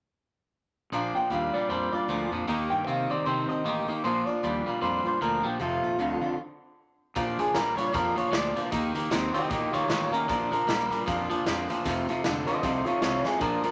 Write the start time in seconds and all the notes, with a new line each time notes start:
0.92 A#1 A#2 F3 A#3 D4 F4 D5 F5 A#5
1.14 A#3 D4 F4 D5 F5 G5 A#5, muted fingered electric bass stroke
1.30 D#2 A#2 F3 G3 A#3 D4 F4 D5 F5 A#5
1.53 A#2 G3 A#3 D4 F4 D5 F5 G5, muted fingered electric bass stroke
1.69 F2 A#2 F3 G3 A#3 D4 F4 C5 D5 F5 A5
1.92 A#3 D4 F4 D5 F5 A#5, muted fingered electric bass stroke
2.08 D2 A#2 F3 A#3 D4 F4 A#5
2.31 F2 A#2 F3 A#3 D4 F4 D5 F5 A#5
2.47 D#2 D#3 A#3 D#4 G4 D#5 G5 A#5
2.70 G2 A#3 D#4 G4 G5 A#5
2.87 C3 D#3 A#3 C4 D#4 G4 D#5 F5 A#5
3.09 D#3 A#3 C4 D#4 G4 D5 D#5 G5 A#5, muted fingered electric bass stroke
3.25 C3 D#3 A#3 C4 D#4 G4 C5 D#5 G5 A5
3.49 A#3 D#4 G4 D#5 G5 A5, muted fingered electric bass stroke
3.64 A1 D#3 A#3 D#4 G4 D#5 G5 C6
3.88 D#3 A#3 D#4 G4 D#5 G5 A#5, muted fingered electric bass stroke
4.04 A#1 A#2 F3 A#3 D4 F4 C5 D5 F5 A#5
4.27 A#3 D4 F4 D5 F5 A#5, muted fingered electric bass stroke
4.43 D#2 A#2 F3 G3 A#3 D4 F4 F5 A5
4.66 A#2 G3 A#3 D4 F4 D5 F5 A#5, muted fingered electric bass stroke
4.81 F2 A#2 F3 G3 A#3 D4 F4 C5 D5 F5 A#5
5.04 A#3 D4 F4 C5 D5 F5 A#5, muted fingered electric bass stroke
5.21 D2 A#2 F3 A#3 D4 F4 A#4 D5 F5 A#5
5.43 A#1 A#2 F3 A#3 D4 F4 G4 D5 F5 G5
5.59 F1 F2 C3 D#3 A3 D#4 F4 C5 F5 A5
5.82 A#1 D#3 A3 D#4 F4 C5 F5
5.86 A5
5.98 D2 F2 C3 D3 D#3 A3 D#4 F4 C5 F5 A5
6.21 F2 D3 D#3 A3 D#4 F4 C5 F5 A5, muted fingered electric bass stroke
7.15 A#1 A#2 F3 A#3 D4 F4 D5 F5 A#5, kick, closed hi-hat
7.39 A#2 F3 A#3 D4 F4 G#4 D5 F5 C6, muted fingered electric bass stroke, closed hi-hat
7.54 A#1 A#2 F3 G3 A#3 D4 F4 A#4 D5 F5, snare, closed hi-hat
7.77 A#2 G3 A#3 D4 F4 C#5 D5 F5 A#5, muted fingered electric bass stroke, closed hi-hat
7.93 F2 A#2 F3 A#3 D4 F4 A#4 D5 F5 C6, kick, closed hi-hat
8.16 A#2 F3 A#3 D4 F4 C#5 D5 F5 A#5, muted fingered electric bass stroke, closed hi-hat
8.31 D2 A#2 F3 A#3 D4 D5 A#5, snare, closed hi-hat
8.35 F4
8.55 A#2 F3 A#3 D4 F4 D5 F5 A#5, muted fingered electric bass stroke, closed hi-hat
8.71 D#2 D#3 A#3 D#4 G4 D#5 G5 A#5, kick, closed hi-hat
8.94 D#3 A#3 D#4 G4 D#5 G5 A#5, muted fingered electric bass stroke, closed hi-hat
9.10 D#2 D#3 A#3 C4 D#4 G4 D#5 G5 A#5, snare, closed hi-hat
9.34 D#3 A#3 C4 D#4 G4 D#5 G5 A5, muted fingered electric bass stroke, closed hi-hat
9.48 A#2 D#3 A#3 D#4 G4 D#5 G5 A#5, kick, closed hi-hat
9.72 D#3 A#3 D#4 F4 G4 C#5 D#5 G5 A#5, muted fingered electric bass stroke, closed hi-hat
9.88 A1 D#3 A#3 D#4 F4 G4 C#5 G5 A#5, snare, closed hi-hat
10.11 D#3 A#3 C#4 D#4 G4 A#4 D#5 G5 A#5, muted fingered electric bass stroke, closed hi-hat
10.28 A#1 A#2 F3 A#3 D4 F4 A#4 D5 F5 A#5, kick, closed hi-hat
10.50 A#2 F3 A#3 D4 F4 A#4 D5 F5 A#5, muted fingered electric bass stroke, closed hi-hat
10.66 A#1 A#2 F3 G3 A#3 D4 F4 D5 F5, snare, closed hi-hat
10.90 A#2 G3 A#3 D4 F4 D5 F5 A#5, muted fingered electric bass stroke, closed hi-hat
11.06 F2 A#2 F3 A#3 D4 F4 D5 F5 A#5, kick, closed hi-hat
11.29 A#2 F3 A#3 D4 F4 D5 F5 A5, muted fingered electric bass stroke, closed hi-hat
11.45 F2 A#2 F3 A#3 D4 F4 D5 A#5, snare, closed hi-hat
11.68 A#2 F3 A#3 D4 F4 D5 F5 G5, muted fingered electric bass stroke, closed hi-hat
11.84 F1 F2 C3 D#3 A3 D#4 F4 C5 F5 A5, kick, closed hi-hat
12.07 F2 C3 D#3 A3 D#4 F4 C5 F5 A5, muted fingered electric bass stroke, closed hi-hat
12.23 F1 F2 D3 D#3 A3 D#4 F4 C5 F5 A5, snare, closed hi-hat
12.47 F2 D3 D#3 A3 D#4 F4 C5 D#5 F5 A5, muted fingered electric bass stroke, closed hi-hat
12.62 C2 F2 C3 D#3 A3 D#4 F4 C5 D#5 F5 A5, kick, closed hi-hat
12.85 F2 C3 D#3 A3 D#4 F4 C5 C#5 F5 A5, muted fingered electric bass stroke, closed hi-hat
13.01 C2 F2 C3 D#3 A3 D#4 F4 C5 C#5 A5, snare, closed hi-hat
13.24 F2 C3 D#3 A3 C4 D#4 F4 G#4 C5 F5 A5, muted fingered electric bass stroke, snare
13.40 A#1 A#2 F3 A#3 D4 F4 A#4 D5 F5 A#5, kick, closed hi-hat
13.64 A#2 F3 A#3 D4 F4 A#4 D5 F5 A#5, muted fingered electric bass stroke, closed hi-hat